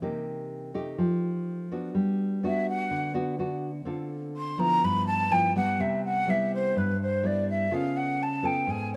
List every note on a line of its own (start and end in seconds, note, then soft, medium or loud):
0.02 0.96 C3 medium
0.02 0.71 A#3 medium
0.02 0.71 D#4 soft
0.02 0.71 G4 medium
0.74 1.66 A3 medium
0.74 1.67 D#4 medium
0.74 1.67 G4 medium
0.98 1.92 F3 medium
1.72 2.39 B3 medium
1.72 2.39 D4 medium
1.72 2.39 F#4 medium
1.95 2.88 G3 medium
2.43 3.11 B3 medium
2.43 3.11 D4 soft
2.43 3.11 F#4 medium
2.43 2.67 E5 medium
2.69 3.12 F#5 medium
2.91 3.84 D3 medium
3.14 3.34 B3 medium
3.14 3.34 D4 medium
3.14 3.35 F#4 medium
3.39 3.69 B3 soft
3.39 3.70 D4 soft
3.39 3.70 F#4 medium
3.85 4.79 D3 medium
3.85 4.54 C4 medium
3.85 4.54 F4 soft
3.85 4.54 A4 soft
4.37 4.61 C6 medium
4.58 5.26 F3 medium
4.58 5.26 B3 medium
4.58 5.27 E4 medium
4.58 4.86 A#5 loud
4.83 5.76 G2 medium
4.83 5.06 B5 medium
5.07 5.33 A5 loud
5.30 5.50 F3 soft
5.30 5.51 B3 medium
5.30 5.51 E4 medium
5.30 5.55 G5 medium
5.56 6.23 G3 medium
5.56 6.23 B3 medium
5.56 6.23 E4 medium
5.56 5.82 F#5 medium
5.80 6.73 C3 medium
5.80 6.04 E5 medium
6.05 6.32 F#5 loud
6.28 6.91 G3 medium
6.28 6.92 B3 medium
6.28 6.92 E4 medium
6.28 6.52 E5 medium
6.54 6.80 C5 medium
6.76 7.69 G2 medium
6.76 7.00 B4 medium
7.02 7.28 C5 medium
7.23 7.67 G3 soft
7.23 7.67 B3 soft
7.23 7.67 E4 medium
7.23 7.48 D5 medium
7.50 7.76 E5 medium
7.71 8.64 C#3 medium
7.71 8.18 B3 medium
7.71 8.19 F4 medium
7.71 8.19 A4 medium
7.71 7.98 F5 medium
7.97 8.24 F#5 medium
8.23 8.47 A5 medium
8.43 8.96 B3 medium
8.43 8.96 F4 medium
8.43 8.96 A4 medium
8.43 8.72 G5 medium
8.67 8.96 G#2 medium
8.67 8.92 G#5 loud